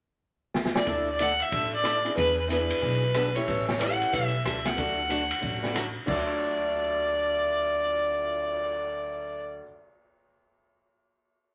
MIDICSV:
0, 0, Header, 1, 7, 480
1, 0, Start_track
1, 0, Key_signature, 2, "major"
1, 0, Tempo, 325203
1, 1272, Time_signature, 4, 2, 24, 8
1, 17045, End_track
2, 0, Start_track
2, 0, Title_t, "Fiddle"
2, 0, Program_c, 0, 110
2, 1108, Note_on_c, 0, 74, 90
2, 1551, Note_off_c, 0, 74, 0
2, 1623, Note_on_c, 0, 74, 91
2, 1801, Note_on_c, 0, 78, 95
2, 1823, Note_off_c, 0, 74, 0
2, 2098, Note_on_c, 0, 76, 101
2, 2120, Note_off_c, 0, 78, 0
2, 2562, Note_off_c, 0, 76, 0
2, 2575, Note_on_c, 0, 74, 92
2, 3173, Note_off_c, 0, 74, 0
2, 3202, Note_on_c, 0, 71, 97
2, 3487, Note_off_c, 0, 71, 0
2, 3536, Note_on_c, 0, 71, 80
2, 3673, Note_off_c, 0, 71, 0
2, 3682, Note_on_c, 0, 71, 89
2, 4946, Note_on_c, 0, 73, 78
2, 4968, Note_off_c, 0, 71, 0
2, 5430, Note_off_c, 0, 73, 0
2, 5437, Note_on_c, 0, 73, 75
2, 5605, Note_on_c, 0, 78, 81
2, 5627, Note_off_c, 0, 73, 0
2, 6094, Note_on_c, 0, 76, 91
2, 6116, Note_off_c, 0, 78, 0
2, 6571, Note_off_c, 0, 76, 0
2, 6578, Note_on_c, 0, 76, 83
2, 6876, Note_on_c, 0, 78, 79
2, 6898, Note_off_c, 0, 76, 0
2, 8486, Note_off_c, 0, 78, 0
2, 8958, Note_on_c, 0, 74, 93
2, 13911, Note_off_c, 0, 74, 0
2, 17045, End_track
3, 0, Start_track
3, 0, Title_t, "Upright piano"
3, 0, Program_c, 1, 0
3, 1259, Note_on_c, 1, 62, 61
3, 1262, Note_on_c, 1, 57, 62
3, 1268, Note_on_c, 1, 64, 54
3, 1276, Note_on_c, 1, 69, 68
3, 1542, Note_off_c, 1, 62, 0
3, 1543, Note_off_c, 1, 57, 0
3, 1546, Note_off_c, 1, 64, 0
3, 1550, Note_off_c, 1, 69, 0
3, 3017, Note_on_c, 1, 59, 56
3, 3020, Note_on_c, 1, 64, 50
3, 3022, Note_on_c, 1, 68, 60
3, 3025, Note_on_c, 1, 62, 60
3, 3180, Note_off_c, 1, 59, 0
3, 3182, Note_off_c, 1, 64, 0
3, 3183, Note_off_c, 1, 68, 0
3, 3184, Note_off_c, 1, 62, 0
3, 3676, Note_on_c, 1, 59, 57
3, 3686, Note_on_c, 1, 64, 55
3, 3690, Note_on_c, 1, 62, 54
3, 3690, Note_on_c, 1, 68, 68
3, 4407, Note_off_c, 1, 59, 0
3, 4411, Note_off_c, 1, 64, 0
3, 4413, Note_off_c, 1, 62, 0
3, 4413, Note_off_c, 1, 68, 0
3, 4959, Note_on_c, 1, 61, 67
3, 4959, Note_on_c, 1, 64, 67
3, 4961, Note_on_c, 1, 57, 67
3, 4966, Note_on_c, 1, 67, 73
3, 5114, Note_off_c, 1, 61, 0
3, 5114, Note_off_c, 1, 64, 0
3, 5115, Note_off_c, 1, 57, 0
3, 5117, Note_off_c, 1, 67, 0
3, 5604, Note_on_c, 1, 57, 68
3, 5612, Note_on_c, 1, 61, 59
3, 5613, Note_on_c, 1, 64, 66
3, 5615, Note_on_c, 1, 67, 78
3, 6330, Note_off_c, 1, 57, 0
3, 6334, Note_off_c, 1, 61, 0
3, 6335, Note_off_c, 1, 64, 0
3, 6336, Note_off_c, 1, 67, 0
3, 7052, Note_on_c, 1, 62, 51
3, 7060, Note_on_c, 1, 57, 57
3, 7060, Note_on_c, 1, 69, 60
3, 7064, Note_on_c, 1, 66, 50
3, 7324, Note_off_c, 1, 62, 0
3, 7328, Note_off_c, 1, 57, 0
3, 7328, Note_off_c, 1, 69, 0
3, 7330, Note_off_c, 1, 66, 0
3, 8294, Note_on_c, 1, 57, 63
3, 8299, Note_on_c, 1, 66, 49
3, 8301, Note_on_c, 1, 62, 51
3, 8310, Note_on_c, 1, 71, 66
3, 8459, Note_off_c, 1, 57, 0
3, 8462, Note_off_c, 1, 66, 0
3, 8463, Note_off_c, 1, 62, 0
3, 8467, Note_off_c, 1, 71, 0
3, 8955, Note_on_c, 1, 38, 74
3, 8955, Note_on_c, 1, 50, 64
3, 8970, Note_on_c, 1, 57, 59
3, 8982, Note_on_c, 1, 66, 64
3, 8998, Note_on_c, 1, 69, 78
3, 14188, Note_off_c, 1, 38, 0
3, 14188, Note_off_c, 1, 50, 0
3, 14203, Note_off_c, 1, 57, 0
3, 14214, Note_off_c, 1, 66, 0
3, 14230, Note_off_c, 1, 69, 0
3, 17045, End_track
4, 0, Start_track
4, 0, Title_t, "Steel-string acoustic guitar"
4, 0, Program_c, 2, 25
4, 1271, Note_on_c, 2, 50, 62
4, 1280, Note_on_c, 2, 62, 61
4, 1283, Note_on_c, 2, 57, 64
4, 1287, Note_on_c, 2, 64, 54
4, 1295, Note_on_c, 2, 69, 62
4, 1586, Note_off_c, 2, 50, 0
4, 1590, Note_off_c, 2, 62, 0
4, 1592, Note_off_c, 2, 57, 0
4, 1594, Note_off_c, 2, 64, 0
4, 1598, Note_off_c, 2, 69, 0
4, 1758, Note_on_c, 2, 50, 79
4, 1766, Note_on_c, 2, 57, 79
4, 1770, Note_on_c, 2, 62, 84
4, 1770, Note_on_c, 2, 64, 85
4, 1779, Note_on_c, 2, 69, 88
4, 1926, Note_off_c, 2, 50, 0
4, 1930, Note_off_c, 2, 57, 0
4, 1932, Note_off_c, 2, 62, 0
4, 1932, Note_off_c, 2, 64, 0
4, 1937, Note_off_c, 2, 69, 0
4, 2235, Note_on_c, 2, 50, 66
4, 2239, Note_on_c, 2, 57, 55
4, 2244, Note_on_c, 2, 62, 59
4, 2248, Note_on_c, 2, 64, 53
4, 2253, Note_on_c, 2, 69, 59
4, 2550, Note_off_c, 2, 50, 0
4, 2552, Note_off_c, 2, 57, 0
4, 2554, Note_off_c, 2, 62, 0
4, 2557, Note_off_c, 2, 64, 0
4, 2559, Note_off_c, 2, 69, 0
4, 2700, Note_on_c, 2, 50, 68
4, 2704, Note_on_c, 2, 57, 72
4, 2710, Note_on_c, 2, 69, 78
4, 2711, Note_on_c, 2, 62, 71
4, 2715, Note_on_c, 2, 64, 81
4, 2879, Note_off_c, 2, 50, 0
4, 2881, Note_off_c, 2, 57, 0
4, 2884, Note_off_c, 2, 62, 0
4, 2884, Note_off_c, 2, 69, 0
4, 2886, Note_off_c, 2, 64, 0
4, 3182, Note_on_c, 2, 52, 54
4, 3185, Note_on_c, 2, 59, 57
4, 3192, Note_on_c, 2, 62, 65
4, 3200, Note_on_c, 2, 68, 75
4, 3506, Note_off_c, 2, 52, 0
4, 3507, Note_off_c, 2, 59, 0
4, 3511, Note_off_c, 2, 62, 0
4, 3514, Note_off_c, 2, 68, 0
4, 3663, Note_on_c, 2, 52, 69
4, 3671, Note_on_c, 2, 59, 86
4, 3674, Note_on_c, 2, 62, 73
4, 3681, Note_on_c, 2, 68, 88
4, 3842, Note_off_c, 2, 52, 0
4, 3847, Note_off_c, 2, 59, 0
4, 3848, Note_off_c, 2, 62, 0
4, 3852, Note_off_c, 2, 68, 0
4, 4143, Note_on_c, 2, 52, 57
4, 4147, Note_on_c, 2, 59, 63
4, 4156, Note_on_c, 2, 62, 59
4, 4164, Note_on_c, 2, 68, 64
4, 4468, Note_off_c, 2, 52, 0
4, 4469, Note_off_c, 2, 59, 0
4, 4474, Note_off_c, 2, 62, 0
4, 4478, Note_off_c, 2, 68, 0
4, 4643, Note_on_c, 2, 59, 73
4, 4645, Note_on_c, 2, 52, 63
4, 4652, Note_on_c, 2, 62, 80
4, 4659, Note_on_c, 2, 68, 79
4, 4814, Note_off_c, 2, 59, 0
4, 4815, Note_off_c, 2, 52, 0
4, 4818, Note_off_c, 2, 62, 0
4, 4822, Note_off_c, 2, 68, 0
4, 5123, Note_on_c, 2, 52, 55
4, 5130, Note_on_c, 2, 61, 65
4, 5135, Note_on_c, 2, 55, 59
4, 5142, Note_on_c, 2, 69, 64
4, 5144, Note_on_c, 2, 64, 61
4, 5438, Note_off_c, 2, 52, 0
4, 5442, Note_off_c, 2, 61, 0
4, 5444, Note_off_c, 2, 55, 0
4, 5448, Note_off_c, 2, 69, 0
4, 5449, Note_off_c, 2, 64, 0
4, 5581, Note_on_c, 2, 52, 78
4, 5593, Note_on_c, 2, 55, 81
4, 5597, Note_on_c, 2, 61, 84
4, 5601, Note_on_c, 2, 64, 82
4, 5605, Note_on_c, 2, 69, 89
4, 5763, Note_off_c, 2, 52, 0
4, 5769, Note_off_c, 2, 55, 0
4, 5771, Note_off_c, 2, 61, 0
4, 5773, Note_off_c, 2, 64, 0
4, 5775, Note_off_c, 2, 69, 0
4, 6081, Note_on_c, 2, 52, 63
4, 6091, Note_on_c, 2, 55, 58
4, 6094, Note_on_c, 2, 61, 66
4, 6096, Note_on_c, 2, 64, 67
4, 6110, Note_on_c, 2, 69, 74
4, 6397, Note_off_c, 2, 52, 0
4, 6402, Note_off_c, 2, 55, 0
4, 6403, Note_off_c, 2, 61, 0
4, 6405, Note_off_c, 2, 64, 0
4, 6411, Note_off_c, 2, 69, 0
4, 6556, Note_on_c, 2, 52, 64
4, 6567, Note_on_c, 2, 55, 70
4, 6567, Note_on_c, 2, 61, 65
4, 6574, Note_on_c, 2, 64, 74
4, 6582, Note_on_c, 2, 69, 80
4, 6731, Note_off_c, 2, 52, 0
4, 6736, Note_off_c, 2, 55, 0
4, 6736, Note_off_c, 2, 61, 0
4, 6740, Note_off_c, 2, 64, 0
4, 6744, Note_off_c, 2, 69, 0
4, 7030, Note_on_c, 2, 50, 59
4, 7033, Note_on_c, 2, 54, 63
4, 7037, Note_on_c, 2, 57, 62
4, 7049, Note_on_c, 2, 62, 62
4, 7053, Note_on_c, 2, 66, 66
4, 7351, Note_off_c, 2, 50, 0
4, 7352, Note_off_c, 2, 54, 0
4, 7354, Note_off_c, 2, 57, 0
4, 7360, Note_off_c, 2, 62, 0
4, 7362, Note_off_c, 2, 66, 0
4, 7514, Note_on_c, 2, 54, 68
4, 7518, Note_on_c, 2, 50, 78
4, 7522, Note_on_c, 2, 57, 80
4, 7531, Note_on_c, 2, 66, 88
4, 7532, Note_on_c, 2, 62, 85
4, 7689, Note_off_c, 2, 54, 0
4, 7690, Note_off_c, 2, 50, 0
4, 7693, Note_off_c, 2, 57, 0
4, 7697, Note_off_c, 2, 66, 0
4, 7698, Note_off_c, 2, 62, 0
4, 7983, Note_on_c, 2, 50, 61
4, 7993, Note_on_c, 2, 54, 56
4, 7993, Note_on_c, 2, 57, 65
4, 8001, Note_on_c, 2, 62, 59
4, 8007, Note_on_c, 2, 66, 60
4, 8306, Note_off_c, 2, 50, 0
4, 8311, Note_off_c, 2, 54, 0
4, 8311, Note_off_c, 2, 57, 0
4, 8315, Note_off_c, 2, 62, 0
4, 8318, Note_off_c, 2, 66, 0
4, 8463, Note_on_c, 2, 50, 66
4, 8467, Note_on_c, 2, 57, 74
4, 8470, Note_on_c, 2, 54, 71
4, 8474, Note_on_c, 2, 62, 80
4, 8482, Note_on_c, 2, 66, 76
4, 8642, Note_off_c, 2, 50, 0
4, 8643, Note_off_c, 2, 57, 0
4, 8645, Note_off_c, 2, 54, 0
4, 8647, Note_off_c, 2, 62, 0
4, 8651, Note_off_c, 2, 66, 0
4, 8944, Note_on_c, 2, 50, 78
4, 8961, Note_on_c, 2, 54, 68
4, 8975, Note_on_c, 2, 57, 81
4, 8984, Note_on_c, 2, 62, 80
4, 8992, Note_on_c, 2, 66, 82
4, 14177, Note_off_c, 2, 50, 0
4, 14193, Note_off_c, 2, 54, 0
4, 14208, Note_off_c, 2, 57, 0
4, 14217, Note_off_c, 2, 62, 0
4, 14225, Note_off_c, 2, 66, 0
4, 17045, End_track
5, 0, Start_track
5, 0, Title_t, "Upright bass"
5, 0, Program_c, 3, 32
5, 1283, Note_on_c, 3, 38, 92
5, 2051, Note_off_c, 3, 38, 0
5, 2246, Note_on_c, 3, 33, 81
5, 3015, Note_off_c, 3, 33, 0
5, 3211, Note_on_c, 3, 40, 97
5, 3979, Note_off_c, 3, 40, 0
5, 4174, Note_on_c, 3, 35, 84
5, 4940, Note_off_c, 3, 35, 0
5, 5136, Note_on_c, 3, 33, 94
5, 5902, Note_off_c, 3, 33, 0
5, 6102, Note_on_c, 3, 35, 80
5, 6504, Note_off_c, 3, 35, 0
5, 6570, Note_on_c, 3, 37, 81
5, 6977, Note_off_c, 3, 37, 0
5, 7058, Note_on_c, 3, 38, 87
5, 7820, Note_off_c, 3, 38, 0
5, 8019, Note_on_c, 3, 33, 82
5, 8779, Note_off_c, 3, 33, 0
5, 8976, Note_on_c, 3, 38, 91
5, 14150, Note_off_c, 3, 38, 0
5, 17045, End_track
6, 0, Start_track
6, 0, Title_t, "Cymbal swell"
6, 9278, Note_on_c, 9, 59, 46
6, 12693, Note_off_c, 9, 59, 0
6, 17045, End_track
7, 0, Start_track
7, 0, Title_t, "Drums"
7, 803, Note_on_c, 9, 38, 72
7, 951, Note_off_c, 9, 38, 0
7, 962, Note_on_c, 9, 38, 78
7, 1110, Note_off_c, 9, 38, 0
7, 1112, Note_on_c, 9, 38, 89
7, 1260, Note_off_c, 9, 38, 0
7, 1278, Note_on_c, 9, 51, 56
7, 1281, Note_on_c, 9, 36, 33
7, 1425, Note_off_c, 9, 51, 0
7, 1429, Note_off_c, 9, 36, 0
7, 1756, Note_on_c, 9, 44, 54
7, 1756, Note_on_c, 9, 51, 66
7, 1903, Note_off_c, 9, 44, 0
7, 1903, Note_off_c, 9, 51, 0
7, 2065, Note_on_c, 9, 51, 46
7, 2213, Note_off_c, 9, 51, 0
7, 2246, Note_on_c, 9, 36, 34
7, 2247, Note_on_c, 9, 51, 66
7, 2394, Note_off_c, 9, 36, 0
7, 2394, Note_off_c, 9, 51, 0
7, 2726, Note_on_c, 9, 37, 53
7, 2726, Note_on_c, 9, 44, 58
7, 2726, Note_on_c, 9, 51, 66
7, 2874, Note_off_c, 9, 37, 0
7, 2874, Note_off_c, 9, 44, 0
7, 2874, Note_off_c, 9, 51, 0
7, 3036, Note_on_c, 9, 51, 47
7, 3184, Note_off_c, 9, 51, 0
7, 3210, Note_on_c, 9, 36, 33
7, 3215, Note_on_c, 9, 51, 54
7, 3358, Note_off_c, 9, 36, 0
7, 3363, Note_off_c, 9, 51, 0
7, 3693, Note_on_c, 9, 44, 49
7, 3693, Note_on_c, 9, 51, 64
7, 3840, Note_off_c, 9, 44, 0
7, 3840, Note_off_c, 9, 51, 0
7, 3991, Note_on_c, 9, 51, 77
7, 4138, Note_off_c, 9, 51, 0
7, 4169, Note_on_c, 9, 36, 34
7, 4317, Note_off_c, 9, 36, 0
7, 4640, Note_on_c, 9, 37, 67
7, 4640, Note_on_c, 9, 44, 58
7, 4640, Note_on_c, 9, 51, 66
7, 4788, Note_off_c, 9, 37, 0
7, 4788, Note_off_c, 9, 44, 0
7, 4788, Note_off_c, 9, 51, 0
7, 4956, Note_on_c, 9, 51, 53
7, 5103, Note_off_c, 9, 51, 0
7, 5134, Note_on_c, 9, 36, 28
7, 5134, Note_on_c, 9, 51, 54
7, 5281, Note_off_c, 9, 36, 0
7, 5281, Note_off_c, 9, 51, 0
7, 5437, Note_on_c, 9, 38, 61
7, 5585, Note_off_c, 9, 38, 0
7, 5618, Note_on_c, 9, 44, 46
7, 5618, Note_on_c, 9, 51, 70
7, 5766, Note_off_c, 9, 44, 0
7, 5766, Note_off_c, 9, 51, 0
7, 5928, Note_on_c, 9, 51, 54
7, 6076, Note_off_c, 9, 51, 0
7, 6100, Note_on_c, 9, 36, 32
7, 6101, Note_on_c, 9, 51, 64
7, 6247, Note_off_c, 9, 36, 0
7, 6249, Note_off_c, 9, 51, 0
7, 6574, Note_on_c, 9, 37, 59
7, 6574, Note_on_c, 9, 44, 56
7, 6574, Note_on_c, 9, 51, 63
7, 6721, Note_off_c, 9, 37, 0
7, 6721, Note_off_c, 9, 44, 0
7, 6721, Note_off_c, 9, 51, 0
7, 6869, Note_on_c, 9, 38, 61
7, 6869, Note_on_c, 9, 51, 51
7, 7017, Note_off_c, 9, 38, 0
7, 7017, Note_off_c, 9, 51, 0
7, 7054, Note_on_c, 9, 51, 55
7, 7055, Note_on_c, 9, 36, 35
7, 7202, Note_off_c, 9, 36, 0
7, 7202, Note_off_c, 9, 51, 0
7, 7531, Note_on_c, 9, 44, 48
7, 7531, Note_on_c, 9, 51, 58
7, 7679, Note_off_c, 9, 44, 0
7, 7679, Note_off_c, 9, 51, 0
7, 7834, Note_on_c, 9, 51, 68
7, 7981, Note_off_c, 9, 51, 0
7, 8014, Note_on_c, 9, 36, 33
7, 8162, Note_off_c, 9, 36, 0
7, 8316, Note_on_c, 9, 38, 34
7, 8464, Note_off_c, 9, 38, 0
7, 8495, Note_on_c, 9, 37, 66
7, 8495, Note_on_c, 9, 44, 67
7, 8495, Note_on_c, 9, 51, 73
7, 8643, Note_off_c, 9, 37, 0
7, 8643, Note_off_c, 9, 44, 0
7, 8643, Note_off_c, 9, 51, 0
7, 8975, Note_on_c, 9, 49, 54
7, 8976, Note_on_c, 9, 36, 55
7, 9122, Note_off_c, 9, 49, 0
7, 9123, Note_off_c, 9, 36, 0
7, 17045, End_track
0, 0, End_of_file